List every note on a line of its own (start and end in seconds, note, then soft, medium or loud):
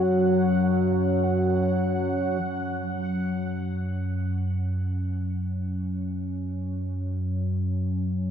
0.00 2.45 F#2 medium
0.00 2.46 F#3 medium
0.00 2.42 C#4 medium
0.00 2.44 F#4 medium
0.00 2.43 C#5 medium
0.00 2.43 F#5 medium
0.00 2.47 F#5 medium
2.44 8.31 F#2 medium
2.44 8.31 F#3 medium
2.44 8.31 C#4 medium
3.31 8.31 C#5 medium
4.15 8.31 F#4 medium
5.07 8.31 F#5 medium